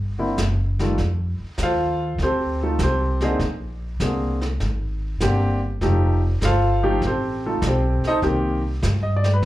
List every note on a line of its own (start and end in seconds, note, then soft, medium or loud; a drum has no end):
0.00 0.34 G1 medium
0.18 0.36 D3 medium
0.18 0.36 A#3 medium
0.18 0.36 C4 medium
0.18 0.36 E4 medium
0.38 0.94 F#1 medium
0.38 snare medium
0.38 hi-hat pedal medium
0.79 0.97 D#3 medium
0.79 0.97 G3 soft
0.79 0.97 A3 medium
0.79 0.97 F4 medium
0.79 snare soft
0.98 1.37 F2 medium
0.98 brush sweep soft
0.98 kick soft
0.98 snare soft
1.40 muted upright bass stroke soft
1.58 2.17 D#2 medium
1.58 kick soft
1.58 snare medium
1.58 hi-hat pedal medium
1.63 2.17 F4 medium
1.63 2.17 A4 medium
1.63 2.17 C5 medium
1.63 2.17 F5 medium
2.19 2.77 D2 medium
2.19 brush sweep soft
2.19 kick soft
2.19 snare soft
2.23 2.61 C4 medium
2.23 2.61 G4 medium
2.23 2.61 A4 medium
2.23 2.61 C5 medium
2.63 2.80 A3 medium
2.63 2.80 D#4 soft
2.63 2.80 F4 medium
2.63 2.80 A4 medium
2.79 3.38 C2 medium
2.79 kick soft
2.79 snare medium
2.79 hi-hat pedal medium
2.83 3.21 C4 medium
2.83 3.22 G4 medium
2.83 3.22 A4 medium
2.83 3.21 C5 medium
3.21 3.38 D3 medium
3.21 3.38 A#3 medium
3.21 3.39 C4 medium
3.21 3.38 G#4 medium
3.21 3.41 C5 medium
3.21 snare soft
3.25 3.41 D#4 medium
3.25 3.41 A4 medium
3.25 3.41 D#5 medium
3.39 3.98 A#1 medium
3.39 brush sweep soft
3.39 kick soft
3.39 snare soft
4.00 4.58 C2 medium
4.00 4.38 D3 medium
4.00 4.38 A#3 medium
4.00 4.38 C4 medium
4.00 4.38 G#4 medium
4.00 kick soft
4.00 snare medium
4.00 hi-hat pedal medium
4.41 snare soft
4.60 5.19 G#1 medium
4.60 brush sweep soft
4.60 kick soft
4.60 snare soft
5.20 5.79 G1 medium
5.20 5.58 D3 medium
5.20 5.59 A#3 medium
5.20 5.59 C4 medium
5.20 5.59 G4 medium
5.20 kick soft
5.20 snare medium
5.20 hi-hat pedal soft
5.81 6.40 F1 medium
5.81 6.19 F3 medium
5.81 6.19 A3 medium
5.81 6.19 D#4 medium
5.81 6.19 G4 medium
5.81 brush sweep soft
5.81 kick soft
5.81 snare soft
6.41 7.00 G1 medium
6.41 6.99 F4 medium
6.41 6.99 C5 medium
6.41 6.99 F5 medium
6.41 kick soft
6.41 snare medium
6.41 hi-hat pedal medium
6.45 7.00 A4 medium
6.83 7.00 F3 medium
6.83 7.00 A3 medium
6.83 7.00 D#4 medium
6.83 7.00 G4 medium
7.02 7.60 A1 medium
7.02 brush sweep soft
7.02 kick soft
7.02 snare soft
7.07 7.45 C4 medium
7.07 7.44 G4 medium
7.07 7.45 A4 medium
7.07 7.44 C5 medium
7.46 7.63 A3 medium
7.46 7.63 D#4 medium
7.46 7.63 F4 medium
7.46 7.63 A4 medium
7.62 8.00 B1 medium
7.62 kick soft
7.62 snare medium
7.62 hi-hat pedal medium
7.67 8.05 C4 medium
7.67 8.05 G4 medium
7.67 8.05 A4 medium
7.67 8.05 C5 medium
8.03 muted upright bass stroke soft
8.03 snare soft
8.07 8.18 D#4 medium
8.07 8.18 A4 medium
8.07 8.18 C5 medium
8.07 8.18 D#5 loud
8.22 8.81 C2 medium
8.22 8.60 D#3 medium
8.22 8.60 A#3 medium
8.22 8.60 C4 medium
8.22 8.60 G4 medium
8.22 brush sweep soft
8.22 kick soft
8.22 snare soft
8.83 9.41 G2 medium
8.83 kick soft
8.83 snare medium
8.83 hi-hat pedal medium
9.03 9.23 D#5 medium
9.16 9.29 D5 medium
9.24 snare medium
9.33 9.43 B4 medium